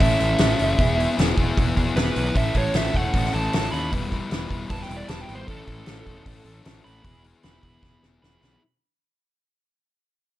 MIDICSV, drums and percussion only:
0, 0, Header, 1, 2, 480
1, 0, Start_track
1, 0, Key_signature, 3, "major"
1, 0, Tempo, 391645
1, 958, Time_signature, 4, 2, 24, 8
1, 12741, End_track
2, 0, Start_track
2, 0, Title_t, "Drums"
2, 6, Note_on_c, 9, 36, 104
2, 9, Note_on_c, 9, 46, 71
2, 128, Note_off_c, 9, 36, 0
2, 131, Note_off_c, 9, 46, 0
2, 249, Note_on_c, 9, 46, 45
2, 371, Note_off_c, 9, 46, 0
2, 471, Note_on_c, 9, 46, 69
2, 484, Note_on_c, 9, 38, 115
2, 594, Note_off_c, 9, 46, 0
2, 607, Note_off_c, 9, 38, 0
2, 724, Note_on_c, 9, 46, 44
2, 847, Note_off_c, 9, 46, 0
2, 966, Note_on_c, 9, 36, 104
2, 968, Note_on_c, 9, 46, 60
2, 1088, Note_off_c, 9, 36, 0
2, 1090, Note_off_c, 9, 46, 0
2, 1226, Note_on_c, 9, 46, 45
2, 1349, Note_off_c, 9, 46, 0
2, 1454, Note_on_c, 9, 46, 53
2, 1468, Note_on_c, 9, 38, 109
2, 1577, Note_off_c, 9, 46, 0
2, 1590, Note_off_c, 9, 38, 0
2, 1685, Note_on_c, 9, 46, 45
2, 1686, Note_on_c, 9, 36, 85
2, 1808, Note_off_c, 9, 36, 0
2, 1808, Note_off_c, 9, 46, 0
2, 1930, Note_on_c, 9, 36, 117
2, 1934, Note_on_c, 9, 46, 62
2, 2053, Note_off_c, 9, 36, 0
2, 2056, Note_off_c, 9, 46, 0
2, 2170, Note_on_c, 9, 46, 44
2, 2171, Note_on_c, 9, 36, 68
2, 2292, Note_off_c, 9, 46, 0
2, 2293, Note_off_c, 9, 36, 0
2, 2409, Note_on_c, 9, 46, 65
2, 2422, Note_on_c, 9, 38, 120
2, 2531, Note_off_c, 9, 46, 0
2, 2545, Note_off_c, 9, 38, 0
2, 2647, Note_on_c, 9, 46, 48
2, 2769, Note_off_c, 9, 46, 0
2, 2886, Note_on_c, 9, 46, 63
2, 2888, Note_on_c, 9, 36, 96
2, 3009, Note_off_c, 9, 46, 0
2, 3010, Note_off_c, 9, 36, 0
2, 3120, Note_on_c, 9, 46, 54
2, 3125, Note_on_c, 9, 36, 78
2, 3243, Note_off_c, 9, 46, 0
2, 3248, Note_off_c, 9, 36, 0
2, 3356, Note_on_c, 9, 46, 63
2, 3370, Note_on_c, 9, 38, 101
2, 3479, Note_off_c, 9, 46, 0
2, 3492, Note_off_c, 9, 38, 0
2, 3608, Note_on_c, 9, 36, 69
2, 3612, Note_on_c, 9, 46, 46
2, 3731, Note_off_c, 9, 36, 0
2, 3735, Note_off_c, 9, 46, 0
2, 3842, Note_on_c, 9, 46, 73
2, 3846, Note_on_c, 9, 36, 112
2, 3965, Note_off_c, 9, 46, 0
2, 3969, Note_off_c, 9, 36, 0
2, 3983, Note_on_c, 9, 38, 31
2, 4082, Note_on_c, 9, 46, 42
2, 4105, Note_off_c, 9, 38, 0
2, 4205, Note_off_c, 9, 46, 0
2, 4328, Note_on_c, 9, 46, 72
2, 4342, Note_on_c, 9, 38, 114
2, 4451, Note_off_c, 9, 46, 0
2, 4464, Note_off_c, 9, 38, 0
2, 4580, Note_on_c, 9, 46, 45
2, 4703, Note_off_c, 9, 46, 0
2, 4814, Note_on_c, 9, 36, 101
2, 4814, Note_on_c, 9, 46, 63
2, 4937, Note_off_c, 9, 36, 0
2, 4937, Note_off_c, 9, 46, 0
2, 5051, Note_on_c, 9, 36, 71
2, 5053, Note_on_c, 9, 46, 43
2, 5173, Note_off_c, 9, 36, 0
2, 5176, Note_off_c, 9, 46, 0
2, 5283, Note_on_c, 9, 46, 54
2, 5297, Note_on_c, 9, 38, 94
2, 5406, Note_off_c, 9, 46, 0
2, 5419, Note_off_c, 9, 38, 0
2, 5522, Note_on_c, 9, 36, 77
2, 5524, Note_on_c, 9, 46, 44
2, 5644, Note_off_c, 9, 36, 0
2, 5647, Note_off_c, 9, 46, 0
2, 5757, Note_on_c, 9, 46, 61
2, 5763, Note_on_c, 9, 36, 102
2, 5880, Note_off_c, 9, 46, 0
2, 5885, Note_off_c, 9, 36, 0
2, 5907, Note_on_c, 9, 38, 29
2, 6011, Note_on_c, 9, 46, 46
2, 6030, Note_off_c, 9, 38, 0
2, 6134, Note_off_c, 9, 46, 0
2, 6231, Note_on_c, 9, 46, 65
2, 6245, Note_on_c, 9, 38, 119
2, 6354, Note_off_c, 9, 46, 0
2, 6367, Note_off_c, 9, 38, 0
2, 6479, Note_on_c, 9, 46, 41
2, 6602, Note_off_c, 9, 46, 0
2, 6716, Note_on_c, 9, 36, 108
2, 6717, Note_on_c, 9, 46, 62
2, 6839, Note_off_c, 9, 36, 0
2, 6840, Note_off_c, 9, 46, 0
2, 6953, Note_on_c, 9, 46, 45
2, 6958, Note_on_c, 9, 36, 67
2, 7076, Note_off_c, 9, 46, 0
2, 7080, Note_off_c, 9, 36, 0
2, 7182, Note_on_c, 9, 46, 60
2, 7195, Note_on_c, 9, 38, 98
2, 7304, Note_off_c, 9, 46, 0
2, 7318, Note_off_c, 9, 38, 0
2, 7435, Note_on_c, 9, 36, 74
2, 7437, Note_on_c, 9, 46, 47
2, 7558, Note_off_c, 9, 36, 0
2, 7559, Note_off_c, 9, 46, 0
2, 7672, Note_on_c, 9, 46, 75
2, 7673, Note_on_c, 9, 36, 104
2, 7795, Note_off_c, 9, 46, 0
2, 7796, Note_off_c, 9, 36, 0
2, 7912, Note_on_c, 9, 46, 47
2, 8035, Note_off_c, 9, 46, 0
2, 8152, Note_on_c, 9, 46, 67
2, 8165, Note_on_c, 9, 38, 111
2, 8275, Note_off_c, 9, 46, 0
2, 8288, Note_off_c, 9, 38, 0
2, 8410, Note_on_c, 9, 46, 45
2, 8533, Note_off_c, 9, 46, 0
2, 8634, Note_on_c, 9, 46, 64
2, 8636, Note_on_c, 9, 36, 103
2, 8756, Note_off_c, 9, 46, 0
2, 8758, Note_off_c, 9, 36, 0
2, 8876, Note_on_c, 9, 46, 44
2, 8998, Note_off_c, 9, 46, 0
2, 9107, Note_on_c, 9, 46, 61
2, 9120, Note_on_c, 9, 38, 98
2, 9229, Note_off_c, 9, 46, 0
2, 9243, Note_off_c, 9, 38, 0
2, 9348, Note_on_c, 9, 46, 42
2, 9354, Note_on_c, 9, 36, 70
2, 9470, Note_off_c, 9, 46, 0
2, 9477, Note_off_c, 9, 36, 0
2, 9595, Note_on_c, 9, 36, 111
2, 9601, Note_on_c, 9, 38, 53
2, 9717, Note_off_c, 9, 36, 0
2, 9724, Note_off_c, 9, 38, 0
2, 9841, Note_on_c, 9, 38, 49
2, 9963, Note_off_c, 9, 38, 0
2, 10096, Note_on_c, 9, 38, 77
2, 10219, Note_off_c, 9, 38, 0
2, 10336, Note_on_c, 9, 38, 67
2, 10458, Note_off_c, 9, 38, 0
2, 12741, End_track
0, 0, End_of_file